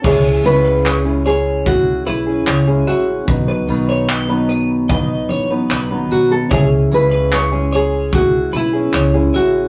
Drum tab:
CC |x-------|--------|--------|
TB |-x-x-x-x|-x-x-x-x|-x-x-x-x|
CP |--x---x-|--x---x-|--x---x-|
BD |o---o---|o---o---|o---o---|